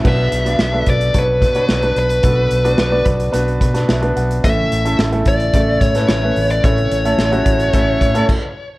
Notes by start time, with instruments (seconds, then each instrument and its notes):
0.04 fingered electric bass B1, grand piano B2 B3 D4 F#4 B4, kick, crash
0.08 lead electric guitar E5
0.32 fingered electric bass B1, closed hi-hat
0.45 grand piano B3 D4 F#4 D5, closed hi-hat
0.59 fingered electric bass B1, snare
0.72 grand piano B3 D4 F#4 A4
0.86 fingered electric bass B1, lead electric guitar D5, kick, closed hi-hat
1.01 closed hi-hat
1.14 fingered electric bass B1, grand piano B3 D4 F#4 C#5, kick, closed hi-hat
1.18 lead electric guitar B4
1.42 fingered electric bass B2, kick, closed hi-hat
1.55 grand piano B3 D4 F#4 C#5, closed hi-hat
1.69 fingered electric bass B1, snare
1.82 grand piano B3 D4 F#4 B4, closed hi-hat
1.96 fingered electric bass B1, lead electric guitar B4, closed hi-hat
2.10 closed hi-hat
2.23 fingered electric bass B1, grand piano B2 B3 D4 F#4 A4, kick, closed hi-hat
2.51 fingered electric bass B1, closed hi-hat
2.64 grand piano B3 D4 F#4 D5, closed hi-hat
2.78 fingered electric bass B1, snare
2.91 grand piano B3 D4 F#4 D5
3.06 fingered electric bass B1, kick, closed hi-hat
3.20 closed hi-hat
3.32 fingered electric bass B1, grand piano B3 D4 F#4 B4, closed hi-hat
3.48 closed hi-hat
3.61 fingered electric bass B2, grand piano B5, kick, closed hi-hat
3.74 grand piano B3 D4 F#4 B4, snare, closed hi-hat
3.88 fingered electric bass B1, grand piano E5, snare
4.02 grand piano B3 D4 F#4 B4, closed hi-hat
4.16 fingered electric bass B1, grand piano F#5, closed hi-hat
4.31 closed hi-hat
4.44 fingered electric bass A1, grand piano A2 A3 C#4 E4 A4, lead electric guitar E5, kick, closed hi-hat
4.71 fingered electric bass A1, closed hi-hat
4.85 grand piano A3 C#4 E4 A4, closed hi-hat
4.99 fingered electric bass A1, snare
5.12 grand piano A3 C#4 E4 A4, closed hi-hat
5.26 fingered electric bass A1, lead electric guitar D5, kick, closed hi-hat
5.40 closed hi-hat
5.54 fingered electric bass A1, grand piano C#3 A3 E4 A4, kick, closed hi-hat
5.81 fingered electric bass A2, lead electric guitar C#5, kick, closed hi-hat
5.95 grand piano A3 C#4 E4 B4, snare, closed hi-hat
6.09 fingered electric bass A1, lead electric guitar C#5, snare
6.23 grand piano A3 C#4 E4 B4
6.36 fingered electric bass A1, open hi-hat
6.50 lead electric guitar D5, closed hi-hat
6.64 fingered electric bass A1, grand piano A2 A3 C#4 E4 A4, lead electric guitar C#5, kick, closed hi-hat
6.78 closed hi-hat
6.91 fingered electric bass A1, closed hi-hat
7.05 grand piano A3 C#4 E4 A4, closed hi-hat
7.18 fingered electric bass A1, snare
7.32 grand piano A3 C#4 E4 F#4, closed hi-hat
7.46 fingered electric bass A1, kick, closed hi-hat
7.60 closed hi-hat
7.73 fingered electric bass A1, grand piano A3 C#4 E4 A4, kick, closed hi-hat
8.01 fingered electric bass A2, kick, closed hi-hat
8.14 grand piano A3 C#4 E4 A4, closed hi-hat
8.29 kick, crash